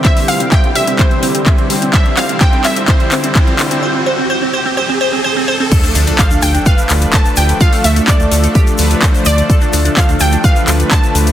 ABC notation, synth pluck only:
X:1
M:4/4
L:1/8
Q:1/4=127
K:Ddor
V:1 name="Synth pluck"
e f g e c z3 | e f g e c z3 | z8 | z2 f g f2 a g |
f e d4- d d- | d2 f g f2 a2 |]